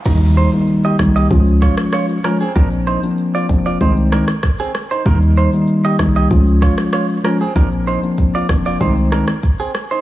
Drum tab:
CC |x---------------|----------------|----------------|----------------|
SH |xxxxxxxxxxxxxxxx|xxxxxxxxxxxxxxxx|xxxxxxxxxxxxxxxx|xxxxxxxxxxxxxxxx|
SD |------r---rrr-r-|----------rrr-r-|------r---rrr-r-|------r---rr--r-|
BD |o-----o-o-o-----|o-----o-o---o---|o-----o-o-o-----|o---o-o-o---o---|